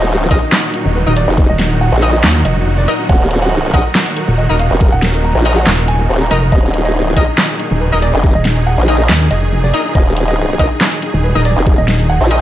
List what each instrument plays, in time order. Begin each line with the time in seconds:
Already playing: wobble bass D#1, supersaw synth A#2 D#3 F#3 D#4 F#4
0.09 wobble bass D1, grand piano D#4
0.21 grand piano D#4
0.31 wobble bass A#1, synth stab D#4 A#4 D#5, grand piano D#5, kick, closed hi-hat
0.42 grand piano D#4
0.52 grand piano D#4, snare, clap
0.74 grand piano D#4, closed hi-hat
0.85 wobble bass D#1, grand piano D#4
0.95 grand piano B4
1.06 wobble bass D#1, synth stab D#4 A#4 D#5, grand piano D#4
1.16 grand piano D5, closed hi-hat
1.28 wobble bass F1, grand piano D#4
1.38 grand piano D#4, kick
1.49 wobble bass D#1, grand piano D#5
1.59 grand piano D#4, snare, closed hi-hat
1.71 grand piano D#4, closed hi-hat
1.81 grand piano F#5
1.92 wobble bass A#1, grand piano D#4
2.02 synth stab D#4 A#4 D#5, grand piano D#4, closed hi-hat
2.14 grand piano D#5
2.24 wobble bass D#2, grand piano D#4, snare, clap
2.35 grand piano D#4
2.45 wobble bass F1, grand piano D#5, closed hi-hat
2.57 grand piano D#4
2.67 grand piano D#4
2.78 grand piano D5
2.88 grand piano D#4, synth stab D#4 A#4 D#5, closed hi-hat
2.99 grand piano D#4
3.09 wobble bass D#1, grand piano F#5, kick
3.21 grand piano A#4
3.31 grand piano A#4, closed hi-hat
3.42 grand piano F#5, closed hi-hat
3.52 grand piano A#4
3.64 grand piano A#4
3.74 wobble bass A#1, synth stab D#4 A#4 D#5, grand piano F#5, kick, closed hi-hat
3.85 grand piano A#4
3.95 grand piano A#4, snare, clap
4.16 grand piano A#4, closed hi-hat
4.28 wobble bass D#1, grand piano A#4
4.38 grand piano D#5
4.49 wobble bass D#1, synth stab D#4 A#4 D#5, grand piano A#4
4.59 grand piano F5, closed hi-hat
4.71 wobble bass F1, grand piano A#4
4.81 grand piano A#4, kick
4.92 wobble bass D#1, grand piano F#5
5.02 grand piano A#4, snare, closed hi-hat
5.14 grand piano A#4, closed hi-hat
5.24 grand piano A#5
5.35 wobble bass A#1, grand piano A#4
5.45 synth stab D#4 A#4 D#5, grand piano A#4, closed hi-hat
5.57 grand piano F#5
5.67 wobble bass D#1, grand piano A#4, snare, clap
5.78 grand piano A#4
5.88 grand piano G#5, closed hi-hat
5.99 grand piano A#4
6.09 wobble bass D#1, grand piano A#4
6.21 grand piano A#5
6.31 wobble bass F1, synth stab D#4 A#4 D#5, grand piano A#4, closed hi-hat
6.42 grand piano A#4
6.52 wobble bass D#1, supersaw synth G#4, grand piano D#5, kick
6.64 grand piano D#4
6.74 grand piano D#4, closed hi-hat
6.85 grand piano D#5, closed hi-hat
6.95 wobble bass D1, grand piano D#4
7.06 grand piano D#4
7.16 wobble bass A#1, synth stab D#4 A#4 D#5, grand piano D#5, kick, closed hi-hat
7.28 grand piano D#4
7.38 grand piano D#4, snare, clap
7.59 grand piano D#4, closed hi-hat
7.71 wobble bass D#1, grand piano D#4
7.81 grand piano B4
7.92 wobble bass D#1, synth stab D#4 A#4 D#5, grand piano D#4
8.02 grand piano D5, closed hi-hat
8.14 wobble bass F1, grand piano D#4
8.24 grand piano D#4, kick
8.35 wobble bass D#1, grand piano D#5
8.45 grand piano D#4, snare, closed hi-hat
8.57 grand piano D#4, closed hi-hat
8.67 grand piano F#5
8.78 wobble bass A#1, grand piano D#4
8.88 grand piano D#4, synth stab D#4 A#4 D#5, closed hi-hat
8.99 grand piano D#5
9.09 wobble bass D#2, grand piano D#4, snare, clap
9.21 grand piano D#4
9.31 wobble bass F1, grand piano D#5, closed hi-hat
9.42 grand piano D#4
9.52 grand piano D#4
9.64 grand piano D5
9.74 synth stab D#4 A#4 D#5, grand piano D#4, closed hi-hat
9.85 grand piano D#4
9.95 wobble bass D#1, grand piano D#5, kick
10.07 grand piano D#4
10.17 grand piano D#4, closed hi-hat
10.28 grand piano D#5, closed hi-hat
10.38 grand piano D#4
10.50 grand piano D#4
10.59 wobble bass A#1, synth stab D#4 A#4 D#5, grand piano D#5, kick, closed hi-hat
10.71 grand piano D#4
10.81 grand piano D#4, snare, clap
11.02 grand piano D#4, closed hi-hat
11.14 wobble bass D#1, grand piano D#4
11.24 grand piano B4
11.35 wobble bass D#1, synth stab D#4 A#4 D#5, grand piano D#4
11.45 grand piano D5, closed hi-hat
11.57 wobble bass F1, grand piano D#4
11.66 grand piano D#4, kick
11.78 wobble bass D#1, grand piano D#5
11.88 grand piano D#4, snare, closed hi-hat
11.99 grand piano D#4, closed hi-hat
12.09 grand piano F#5
12.21 wobble bass A#1, grand piano D#4
12.31 synth stab D#4 A#4 D#5, grand piano D#4, closed hi-hat